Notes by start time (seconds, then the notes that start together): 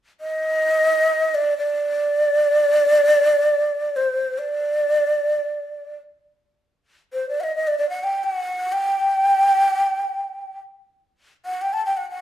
0.21 D#5
1.35 D5
1.58 D5
3.96 C5
4.38 D5
7.13 C5
7.29 D5
7.40 D#5 F#5
7.56 D#5
7.67 D5
7.78 D5
7.89 F#5
8.03 G5
8.24 G5
8.36 F#5
8.72 G5
11.46 F#5
11.62 G5
11.73 A5
11.86 G5
11.97 F#5
12.10 F#5